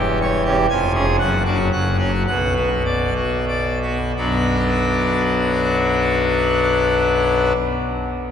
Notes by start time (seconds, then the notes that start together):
Already playing: E1 E2 G4
0.22 C#5
0.45 C#4 G4
0.70 F1 F2 G#5
0.94 C#4 G#4
1.19 F#1 F#2 F#5
1.45 D4 F#4
1.72 F#1 F#2 F#5
1.99 C#4 F#4
2.27 B1 B2 F#5
2.56 B3 F#4
2.86 D5
3.16 F#4
3.48 D5
3.82 B3 F#4
4.17 B1 F#2 F#3 B3 D4 F#4